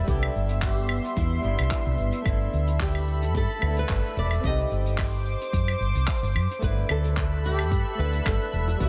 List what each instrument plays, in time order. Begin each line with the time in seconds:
Already playing: analog synth pad E5
0.04 hollow-body jazz guitar G3 B3, kick, shaker
0.08 fretless electric bass C2, analog synth pad B3 C6, hollow-body jazz guitar D4 E4, nylon-string guitar G4, closed hi-hat
0.22 claves, shaker
0.35 fretless electric bass G1, shaker
0.49 closed hi-hat, shaker
0.62 nylon-string guitar G4, kick, clap, closed hi-hat, shaker
0.77 shaker
0.89 claves, shaker
1.04 closed hi-hat, shaker
1.16 fretless electric bass E2, nylon-string guitar E4, kick, closed hi-hat, shaker
1.31 shaker
1.40 fretless electric bass G1, hollow-body jazz guitar G3 B3, shaker
1.45 hollow-body jazz guitar D4 E4
1.58 fretless electric bass C2, closed hi-hat, claves, shaker
1.71 kick, clap, closed hi-hat, shaker
1.86 fretless electric bass C2, shaker
1.98 fretless electric bass G1, shaker
2.12 closed hi-hat, shaker
2.22 fretless electric bass G1, hollow-body jazz guitar A3 B3, kick, closed hi-hat, claves, shaker
2.26 hollow-body jazz guitar D4 E4, analog synth pad A4 B5
2.40 shaker
2.54 fretless electric bass D2, shaker
2.67 closed hi-hat, shaker
2.80 nylon-string guitar G4, kick, clap, closed hi-hat, shaker
2.95 claves, shaker
3.07 shaker
3.22 closed hi-hat, shaker
3.34 fretless electric bass G2, nylon-string guitar A4, kick, closed hi-hat, shaker
3.49 shaker
3.59 fretless electric bass D2, hollow-body jazz guitar A3 B3, claves, shaker
3.64 hollow-body jazz guitar D4 E4
3.76 nylon-string guitar B4, closed hi-hat, shaker
3.89 fretless electric bass G1, kick, clap, closed hi-hat, shaker
4.03 shaker
4.17 fretless electric bass E1, nylon-string guitar D5, shaker
4.31 closed hi-hat, claves, shaker
4.40 fretless electric bass C2, hollow-body jazz guitar C4, kick
4.44 hollow-body jazz guitar D#4 G4, analog synth pad C5 D6, nylon-string guitar D#5, closed hi-hat, shaker
4.59 shaker
4.71 fretless electric bass G1, shaker
4.86 closed hi-hat, shaker
4.98 kick, clap, closed hi-hat, claves, shaker
5.14 shaker
5.25 shaker
5.40 closed hi-hat, shaker
5.53 fretless electric bass F#2, kick, closed hi-hat, shaker
5.68 closed hi-hat, claves, shaker
5.80 fretless electric bass G1, shaker
5.95 fretless electric bass C2, closed hi-hat, shaker
6.07 kick, clap, closed hi-hat, shaker
6.22 fretless electric bass G1, closed hi-hat, shaker
6.35 fretless electric bass F#2, claves, shaker
6.50 closed hi-hat, shaker
6.59 fretless electric bass G1, hollow-body jazz guitar A3 B3, analog synth pad A4 E5 B5, synth texture F#6, kick, closed hi-hat, shaker
6.64 hollow-body jazz guitar D4 E4, nylon-string guitar B4
6.78 shaker
6.89 fretless electric bass D2, nylon-string guitar A4, claves, shaker
7.04 closed hi-hat, shaker
7.17 kick, clap, closed hi-hat, shaker
7.32 shaker
7.44 nylon-string guitar G4, shaker
7.59 closed hi-hat, claves, shaker
7.71 fretless electric bass G2, kick, closed hi-hat, shaker
7.86 shaker
7.95 fretless electric bass D2, hollow-body jazz guitar A3 B3
7.99 hollow-body jazz guitar D4 E4, nylon-string guitar B4, shaker
8.13 closed hi-hat, shaker
8.26 fretless electric bass G1, nylon-string guitar A4, kick, clap, closed hi-hat, claves, shaker
8.41 shaker
8.53 fretless electric bass E1, shaker
8.68 closed hi-hat, high bongo, shaker
8.76 hollow-body jazz guitar G3 B3, closed hi-hat
8.80 fretless electric bass C2, analog synth pad B3 C6, hollow-body jazz guitar D4 E4, nylon-string guitar G4, kick, shaker